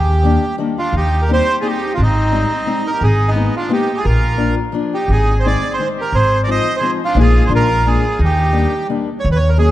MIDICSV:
0, 0, Header, 1, 5, 480
1, 0, Start_track
1, 0, Key_signature, -3, "major"
1, 0, Tempo, 345026
1, 1326, Time_signature, 3, 2, 24, 8
1, 13513, End_track
2, 0, Start_track
2, 0, Title_t, "Bandoneon"
2, 0, Program_c, 0, 23
2, 0, Note_on_c, 0, 67, 68
2, 777, Note_off_c, 0, 67, 0
2, 1092, Note_on_c, 0, 65, 70
2, 1327, Note_off_c, 0, 65, 0
2, 1354, Note_on_c, 0, 67, 75
2, 1698, Note_on_c, 0, 70, 55
2, 1724, Note_off_c, 0, 67, 0
2, 1814, Note_off_c, 0, 70, 0
2, 1849, Note_on_c, 0, 72, 106
2, 2178, Note_off_c, 0, 72, 0
2, 2247, Note_on_c, 0, 68, 69
2, 2313, Note_on_c, 0, 67, 70
2, 2328, Note_off_c, 0, 68, 0
2, 2684, Note_off_c, 0, 67, 0
2, 2700, Note_on_c, 0, 65, 72
2, 2795, Note_off_c, 0, 65, 0
2, 2816, Note_on_c, 0, 63, 76
2, 3993, Note_on_c, 0, 70, 79
2, 4040, Note_off_c, 0, 63, 0
2, 4212, Note_off_c, 0, 70, 0
2, 4220, Note_on_c, 0, 68, 75
2, 4565, Note_on_c, 0, 63, 50
2, 4587, Note_off_c, 0, 68, 0
2, 4947, Note_off_c, 0, 63, 0
2, 4959, Note_on_c, 0, 65, 66
2, 5175, Note_off_c, 0, 65, 0
2, 5184, Note_on_c, 0, 67, 71
2, 5530, Note_on_c, 0, 68, 73
2, 5552, Note_off_c, 0, 67, 0
2, 5635, Note_on_c, 0, 70, 75
2, 5644, Note_off_c, 0, 68, 0
2, 6328, Note_off_c, 0, 70, 0
2, 6876, Note_on_c, 0, 67, 65
2, 7105, Note_off_c, 0, 67, 0
2, 7126, Note_on_c, 0, 68, 71
2, 7494, Note_off_c, 0, 68, 0
2, 7505, Note_on_c, 0, 72, 53
2, 7600, Note_off_c, 0, 72, 0
2, 7603, Note_on_c, 0, 74, 89
2, 7970, Note_off_c, 0, 74, 0
2, 7974, Note_on_c, 0, 72, 66
2, 8184, Note_off_c, 0, 72, 0
2, 8363, Note_on_c, 0, 70, 77
2, 8557, Note_on_c, 0, 72, 77
2, 8565, Note_off_c, 0, 70, 0
2, 8924, Note_off_c, 0, 72, 0
2, 8953, Note_on_c, 0, 74, 51
2, 9039, Note_off_c, 0, 74, 0
2, 9056, Note_on_c, 0, 75, 98
2, 9409, Note_off_c, 0, 75, 0
2, 9409, Note_on_c, 0, 72, 73
2, 9615, Note_off_c, 0, 72, 0
2, 9806, Note_on_c, 0, 65, 80
2, 9980, Note_off_c, 0, 65, 0
2, 10016, Note_on_c, 0, 68, 78
2, 10365, Note_off_c, 0, 68, 0
2, 10387, Note_on_c, 0, 72, 64
2, 10469, Note_off_c, 0, 72, 0
2, 10512, Note_on_c, 0, 70, 102
2, 10947, Note_on_c, 0, 68, 73
2, 10964, Note_off_c, 0, 70, 0
2, 11423, Note_off_c, 0, 68, 0
2, 11474, Note_on_c, 0, 67, 74
2, 12343, Note_off_c, 0, 67, 0
2, 12795, Note_on_c, 0, 73, 77
2, 12920, Note_off_c, 0, 73, 0
2, 12960, Note_on_c, 0, 71, 69
2, 13026, Note_on_c, 0, 73, 84
2, 13047, Note_off_c, 0, 71, 0
2, 13206, Note_on_c, 0, 70, 56
2, 13212, Note_off_c, 0, 73, 0
2, 13323, Note_off_c, 0, 70, 0
2, 13337, Note_on_c, 0, 68, 87
2, 13513, Note_off_c, 0, 68, 0
2, 13513, End_track
3, 0, Start_track
3, 0, Title_t, "Oboe"
3, 0, Program_c, 1, 68
3, 1099, Note_on_c, 1, 62, 52
3, 1308, Note_off_c, 1, 62, 0
3, 1334, Note_on_c, 1, 63, 62
3, 1677, Note_off_c, 1, 63, 0
3, 1713, Note_on_c, 1, 67, 59
3, 1810, Note_off_c, 1, 67, 0
3, 1858, Note_on_c, 1, 67, 77
3, 2183, Note_off_c, 1, 67, 0
3, 2231, Note_on_c, 1, 65, 70
3, 2312, Note_off_c, 1, 65, 0
3, 2361, Note_on_c, 1, 63, 60
3, 2673, Note_off_c, 1, 63, 0
3, 2737, Note_on_c, 1, 62, 50
3, 2805, Note_off_c, 1, 62, 0
3, 2854, Note_on_c, 1, 60, 63
3, 3967, Note_off_c, 1, 60, 0
3, 4058, Note_on_c, 1, 67, 53
3, 4226, Note_off_c, 1, 67, 0
3, 4270, Note_on_c, 1, 63, 72
3, 4578, Note_off_c, 1, 63, 0
3, 4605, Note_on_c, 1, 59, 61
3, 4931, Note_off_c, 1, 59, 0
3, 4961, Note_on_c, 1, 62, 62
3, 5155, Note_off_c, 1, 62, 0
3, 5190, Note_on_c, 1, 63, 56
3, 5520, Note_off_c, 1, 63, 0
3, 5563, Note_on_c, 1, 65, 56
3, 5650, Note_off_c, 1, 65, 0
3, 5679, Note_on_c, 1, 65, 78
3, 6352, Note_off_c, 1, 65, 0
3, 6877, Note_on_c, 1, 63, 50
3, 7084, Note_off_c, 1, 63, 0
3, 7097, Note_on_c, 1, 63, 68
3, 7442, Note_off_c, 1, 63, 0
3, 7458, Note_on_c, 1, 68, 52
3, 7557, Note_off_c, 1, 68, 0
3, 7566, Note_on_c, 1, 68, 75
3, 7915, Note_off_c, 1, 68, 0
3, 7932, Note_on_c, 1, 68, 61
3, 8161, Note_off_c, 1, 68, 0
3, 8315, Note_on_c, 1, 67, 57
3, 8520, Note_off_c, 1, 67, 0
3, 8552, Note_on_c, 1, 68, 84
3, 8886, Note_off_c, 1, 68, 0
3, 8964, Note_on_c, 1, 70, 65
3, 9037, Note_off_c, 1, 70, 0
3, 9062, Note_on_c, 1, 72, 81
3, 9378, Note_off_c, 1, 72, 0
3, 9446, Note_on_c, 1, 68, 69
3, 9635, Note_off_c, 1, 68, 0
3, 9821, Note_on_c, 1, 62, 59
3, 9988, Note_off_c, 1, 62, 0
3, 10036, Note_on_c, 1, 65, 82
3, 10342, Note_off_c, 1, 65, 0
3, 10365, Note_on_c, 1, 68, 64
3, 10449, Note_off_c, 1, 68, 0
3, 10500, Note_on_c, 1, 65, 82
3, 10914, Note_off_c, 1, 65, 0
3, 10946, Note_on_c, 1, 65, 59
3, 11376, Note_off_c, 1, 65, 0
3, 11414, Note_on_c, 1, 63, 74
3, 12312, Note_off_c, 1, 63, 0
3, 13513, End_track
4, 0, Start_track
4, 0, Title_t, "Steel-string acoustic guitar"
4, 0, Program_c, 2, 25
4, 316, Note_on_c, 2, 51, 52
4, 327, Note_on_c, 2, 55, 45
4, 343, Note_on_c, 2, 58, 46
4, 350, Note_on_c, 2, 62, 55
4, 595, Note_off_c, 2, 51, 0
4, 601, Note_off_c, 2, 55, 0
4, 609, Note_off_c, 2, 58, 0
4, 610, Note_off_c, 2, 62, 0
4, 807, Note_on_c, 2, 51, 58
4, 812, Note_on_c, 2, 55, 41
4, 826, Note_on_c, 2, 62, 45
4, 832, Note_on_c, 2, 58, 50
4, 1086, Note_off_c, 2, 51, 0
4, 1088, Note_off_c, 2, 55, 0
4, 1095, Note_off_c, 2, 62, 0
4, 1098, Note_off_c, 2, 58, 0
4, 1789, Note_on_c, 2, 55, 45
4, 1795, Note_on_c, 2, 58, 40
4, 1810, Note_on_c, 2, 60, 45
4, 1812, Note_on_c, 2, 63, 52
4, 2061, Note_off_c, 2, 55, 0
4, 2065, Note_off_c, 2, 58, 0
4, 2072, Note_off_c, 2, 60, 0
4, 2072, Note_off_c, 2, 63, 0
4, 2254, Note_on_c, 2, 58, 37
4, 2256, Note_on_c, 2, 55, 37
4, 2273, Note_on_c, 2, 60, 35
4, 2282, Note_on_c, 2, 63, 43
4, 2533, Note_off_c, 2, 55, 0
4, 2533, Note_off_c, 2, 58, 0
4, 2542, Note_off_c, 2, 60, 0
4, 2547, Note_off_c, 2, 63, 0
4, 3224, Note_on_c, 2, 56, 39
4, 3227, Note_on_c, 2, 55, 46
4, 3236, Note_on_c, 2, 60, 36
4, 3243, Note_on_c, 2, 63, 52
4, 3494, Note_off_c, 2, 55, 0
4, 3495, Note_off_c, 2, 56, 0
4, 3501, Note_off_c, 2, 60, 0
4, 3504, Note_off_c, 2, 63, 0
4, 3696, Note_on_c, 2, 55, 41
4, 3708, Note_on_c, 2, 56, 46
4, 3717, Note_on_c, 2, 60, 51
4, 3732, Note_on_c, 2, 63, 53
4, 3967, Note_off_c, 2, 55, 0
4, 3974, Note_off_c, 2, 56, 0
4, 3976, Note_off_c, 2, 60, 0
4, 3986, Note_off_c, 2, 63, 0
4, 4642, Note_on_c, 2, 56, 52
4, 4653, Note_on_c, 2, 58, 42
4, 4658, Note_on_c, 2, 59, 42
4, 4669, Note_on_c, 2, 63, 55
4, 4920, Note_off_c, 2, 56, 0
4, 4922, Note_off_c, 2, 58, 0
4, 4927, Note_off_c, 2, 59, 0
4, 4932, Note_off_c, 2, 63, 0
4, 5128, Note_on_c, 2, 56, 44
4, 5138, Note_on_c, 2, 58, 48
4, 5147, Note_on_c, 2, 59, 38
4, 5153, Note_on_c, 2, 63, 55
4, 5402, Note_off_c, 2, 56, 0
4, 5409, Note_off_c, 2, 58, 0
4, 5410, Note_off_c, 2, 59, 0
4, 5415, Note_off_c, 2, 63, 0
4, 6076, Note_on_c, 2, 53, 47
4, 6088, Note_on_c, 2, 62, 44
4, 6092, Note_on_c, 2, 58, 42
4, 6102, Note_on_c, 2, 65, 53
4, 6361, Note_off_c, 2, 53, 0
4, 6363, Note_off_c, 2, 62, 0
4, 6368, Note_off_c, 2, 58, 0
4, 6373, Note_off_c, 2, 65, 0
4, 6569, Note_on_c, 2, 53, 52
4, 6572, Note_on_c, 2, 58, 41
4, 6594, Note_on_c, 2, 62, 46
4, 6603, Note_on_c, 2, 65, 52
4, 6853, Note_off_c, 2, 53, 0
4, 6854, Note_off_c, 2, 58, 0
4, 6867, Note_off_c, 2, 62, 0
4, 6868, Note_off_c, 2, 65, 0
4, 7585, Note_on_c, 2, 51, 37
4, 7593, Note_on_c, 2, 60, 39
4, 7596, Note_on_c, 2, 56, 35
4, 7599, Note_on_c, 2, 63, 52
4, 7840, Note_off_c, 2, 51, 0
4, 7843, Note_off_c, 2, 60, 0
4, 7846, Note_off_c, 2, 56, 0
4, 7847, Note_off_c, 2, 63, 0
4, 8048, Note_on_c, 2, 51, 44
4, 8057, Note_on_c, 2, 56, 39
4, 8066, Note_on_c, 2, 60, 45
4, 8086, Note_on_c, 2, 63, 48
4, 8312, Note_off_c, 2, 51, 0
4, 8314, Note_off_c, 2, 56, 0
4, 8320, Note_off_c, 2, 60, 0
4, 8330, Note_off_c, 2, 63, 0
4, 8995, Note_on_c, 2, 53, 52
4, 9009, Note_on_c, 2, 56, 41
4, 9023, Note_on_c, 2, 60, 42
4, 9026, Note_on_c, 2, 63, 52
4, 9259, Note_off_c, 2, 53, 0
4, 9266, Note_off_c, 2, 56, 0
4, 9273, Note_off_c, 2, 60, 0
4, 9273, Note_off_c, 2, 63, 0
4, 9469, Note_on_c, 2, 53, 46
4, 9490, Note_on_c, 2, 56, 38
4, 9497, Note_on_c, 2, 60, 41
4, 9514, Note_on_c, 2, 63, 50
4, 9734, Note_off_c, 2, 53, 0
4, 9745, Note_off_c, 2, 56, 0
4, 9746, Note_off_c, 2, 60, 0
4, 9756, Note_off_c, 2, 63, 0
4, 9952, Note_on_c, 2, 53, 60
4, 9959, Note_on_c, 2, 56, 55
4, 9969, Note_on_c, 2, 58, 65
4, 9970, Note_on_c, 2, 63, 65
4, 10344, Note_off_c, 2, 53, 0
4, 10348, Note_off_c, 2, 56, 0
4, 10352, Note_off_c, 2, 63, 0
4, 10353, Note_off_c, 2, 58, 0
4, 10412, Note_on_c, 2, 53, 55
4, 10421, Note_on_c, 2, 56, 43
4, 10424, Note_on_c, 2, 62, 55
4, 10432, Note_on_c, 2, 58, 47
4, 10682, Note_off_c, 2, 53, 0
4, 10683, Note_off_c, 2, 56, 0
4, 10688, Note_off_c, 2, 62, 0
4, 10690, Note_off_c, 2, 58, 0
4, 10905, Note_on_c, 2, 53, 47
4, 10921, Note_on_c, 2, 56, 44
4, 10924, Note_on_c, 2, 58, 39
4, 10935, Note_on_c, 2, 62, 44
4, 11167, Note_off_c, 2, 53, 0
4, 11175, Note_off_c, 2, 56, 0
4, 11175, Note_off_c, 2, 58, 0
4, 11182, Note_off_c, 2, 62, 0
4, 11859, Note_on_c, 2, 51, 45
4, 11865, Note_on_c, 2, 55, 37
4, 11874, Note_on_c, 2, 58, 46
4, 11886, Note_on_c, 2, 62, 42
4, 12127, Note_off_c, 2, 51, 0
4, 12128, Note_off_c, 2, 55, 0
4, 12134, Note_off_c, 2, 58, 0
4, 12140, Note_off_c, 2, 62, 0
4, 12349, Note_on_c, 2, 51, 37
4, 12356, Note_on_c, 2, 55, 41
4, 12377, Note_on_c, 2, 58, 43
4, 12379, Note_on_c, 2, 62, 50
4, 12616, Note_off_c, 2, 51, 0
4, 12618, Note_off_c, 2, 55, 0
4, 12630, Note_off_c, 2, 62, 0
4, 12631, Note_off_c, 2, 58, 0
4, 13321, Note_on_c, 2, 51, 44
4, 13329, Note_on_c, 2, 54, 47
4, 13329, Note_on_c, 2, 58, 50
4, 13344, Note_on_c, 2, 61, 51
4, 13513, Note_off_c, 2, 51, 0
4, 13513, Note_off_c, 2, 54, 0
4, 13513, Note_off_c, 2, 58, 0
4, 13513, Note_off_c, 2, 61, 0
4, 13513, End_track
5, 0, Start_track
5, 0, Title_t, "Upright bass"
5, 0, Program_c, 3, 32
5, 0, Note_on_c, 3, 39, 88
5, 488, Note_off_c, 3, 39, 0
5, 1289, Note_on_c, 3, 39, 71
5, 1931, Note_off_c, 3, 39, 0
5, 2749, Note_on_c, 3, 32, 85
5, 3376, Note_off_c, 3, 32, 0
5, 4189, Note_on_c, 3, 32, 76
5, 4815, Note_off_c, 3, 32, 0
5, 5635, Note_on_c, 3, 34, 79
5, 6266, Note_off_c, 3, 34, 0
5, 7068, Note_on_c, 3, 32, 75
5, 7702, Note_off_c, 3, 32, 0
5, 8519, Note_on_c, 3, 32, 75
5, 9142, Note_off_c, 3, 32, 0
5, 9946, Note_on_c, 3, 34, 81
5, 10260, Note_off_c, 3, 34, 0
5, 10422, Note_on_c, 3, 34, 91
5, 11048, Note_off_c, 3, 34, 0
5, 11397, Note_on_c, 3, 39, 89
5, 12023, Note_off_c, 3, 39, 0
5, 12861, Note_on_c, 3, 39, 93
5, 13478, Note_off_c, 3, 39, 0
5, 13513, End_track
0, 0, End_of_file